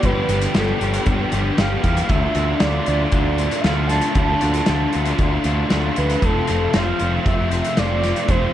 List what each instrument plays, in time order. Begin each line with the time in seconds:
0.03 picked electric bass G1, overdriven electric guitar G2 D3 F3 G3 B3 G4, soft synth lead B4, kick, closed hi-hat
0.29 picked electric bass G1, overdriven electric guitar F3 G3 B3 G4, closed hi-hat
0.41 closed hi-hat
0.54 picked electric bass G1, overdriven electric guitar F3 G3 B3 G4, soft synth lead A4, snare, closed hi-hat
0.80 picked electric bass G1, overdriven electric guitar F3 G3 B3 G4, closed hi-hat
0.94 closed hi-hat
1.06 picked electric bass G1, overdriven electric guitar G2 D3 F3 G3 B3 G4, kick, closed hi-hat
1.32 picked electric bass G1, overdriven electric guitar F3 G3 B3 G4, closed hi-hat
1.57 picked electric bass G1, overdriven electric guitar F3 G3 B3 G4, soft synth lead F5, snare, closed hi-hat
1.83 picked electric bass E2, overdriven electric guitar F3 G3 B3 G4, kick, closed hi-hat
1.97 closed hi-hat
2.09 picked electric bass D2, overdriven electric guitar D3 A3 D4 F4, soft synth lead E5, kick, closed hi-hat
2.35 picked electric bass D2, overdriven electric guitar A3 D4 F4, closed hi-hat
2.59 picked electric bass D2, overdriven electric guitar D3 A3 D4, soft synth lead D5, snare, closed hi-hat
2.64 overdriven electric guitar F4
2.86 picked electric bass D2, overdriven electric guitar A3 D4 F4, closed hi-hat
3.09 picked electric bass D2, overdriven electric guitar D3 A3, soft synth lead D5, kick, closed hi-hat
3.14 overdriven electric guitar D4 F4
3.37 overdriven electric guitar A3 D4 F4, closed hi-hat
3.51 closed hi-hat
3.61 picked electric bass D2, overdriven electric guitar D3 A3, soft synth lead F5, snare, closed hi-hat
3.66 overdriven electric guitar D4 F4
3.87 overdriven electric guitar D4 F4, soft synth lead A5, snare, closed hi-hat
3.92 overdriven electric guitar A3
4.01 closed hi-hat
4.15 picked electric bass D2, overdriven electric guitar D3 A3 D4 F4, kick, closed hi-hat
4.41 picked electric bass D2, overdriven electric guitar A3 D4 F4, closed hi-hat
4.54 closed hi-hat
4.66 picked electric bass D2, overdriven electric guitar D3 A3 D4, snare, closed hi-hat
4.70 overdriven electric guitar F4
4.93 picked electric bass D2, overdriven electric guitar A3 D4 F4, closed hi-hat
5.05 closed hi-hat
5.18 picked electric bass D2, overdriven electric guitar D3 A3 D4 F4, kick, closed hi-hat
5.44 picked electric bass D2, overdriven electric guitar A3 D4 F4, closed hi-hat
5.70 picked electric bass D2, overdriven electric guitar D3 A3 D4 F4, snare, closed hi-hat
5.96 picked electric bass D2, overdriven electric guitar A3 D4 F4, soft synth lead B4, closed hi-hat
6.10 closed hi-hat
6.21 picked electric bass F1, overdriven electric guitar F2 C3 F3 A3 C4 F4, soft synth lead A4, kick, closed hi-hat
6.47 picked electric bass F1, overdriven electric guitar F3 A3 C4 F4, closed hi-hat
6.73 picked electric bass F1, overdriven electric guitar F3 A3 C4 F4, soft synth lead F5, snare, closed hi-hat
6.99 picked electric bass F1, overdriven electric guitar F3 A3 C4 F4, closed hi-hat
7.25 picked electric bass F1, overdriven electric guitar F2 C3 F3 A3 C4 F4, soft synth lead E5, kick, closed hi-hat
7.51 overdriven electric guitar F3 A3 C4 F4, closed hi-hat
7.64 closed hi-hat
7.77 picked electric bass F1, overdriven electric guitar F3 A3 C4 F4, soft synth lead D5, snare, closed hi-hat
8.03 overdriven electric guitar F3 A3 C4 F4, snare, closed hi-hat
8.16 closed hi-hat
8.28 picked electric bass F1, overdriven electric guitar F2 C3 F3 A3 C4 F4, soft synth lead C5, kick, closed hi-hat